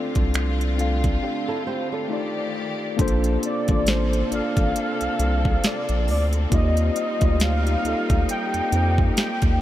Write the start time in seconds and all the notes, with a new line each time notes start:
Already playing: D3 A3 C4 D4 F4 A4 D5
0.15 C2, kick, closed hi-hat
0.34 finger snap, closed hi-hat
0.61 closed hi-hat
0.76 C4 D4 F4 A4, closed hi-hat
0.81 F5
1.04 kick, closed hi-hat
1.23 D4 G4
1.48 E4 A4
1.67 G4 C5
1.92 A4 D5
2.08 D#3 A3 D#4 F4 G4 D5
2.13 D5
2.96 A#1 C3 A#3 C4 D4 F4 A4, kick, closed hi-hat
3.01 C5
3.08 closed hi-hat
3.24 closed hi-hat
3.43 D5, closed hi-hat
3.67 A1 A#3 D4 F4 A4, kick, closed hi-hat
3.71 D5
3.87 C5, snare, closed hi-hat
4.13 closed hi-hat
4.29 A1 A#3 D4 F4 A4, closed hi-hat
4.34 D5 F5
4.57 A1, kick, closed hi-hat
4.76 closed hi-hat
5.01 C2, closed hi-hat
5.19 C2, closed hi-hat
5.45 kick
5.64 D5, snare, closed hi-hat
5.89 A#1, closed hi-hat
6.08 D2 D5, open hi-hat
6.33 closed hi-hat
6.50 D#2 G3 A#3 D#4 F4 G4, kick, closed hi-hat
6.54 D#5
6.77 closed hi-hat
6.96 closed hi-hat
7.19 D2 A#3 D#4 F4 G4, kick, closed hi-hat
7.24 D5
7.40 F5, snare, closed hi-hat
7.67 closed hi-hat
7.82 D2 A#3 D#4 F4 G4, closed hi-hat
7.87 A4
8.10 D2, kick, closed hi-hat
8.28 G4 G5, closed hi-hat
8.54 F2, closed hi-hat
8.70 F2 A#3 D#4 F4 G4, closed hi-hat
8.75 C5
8.98 kick
9.17 G5, snare, closed hi-hat
9.42 D#2, kick, closed hi-hat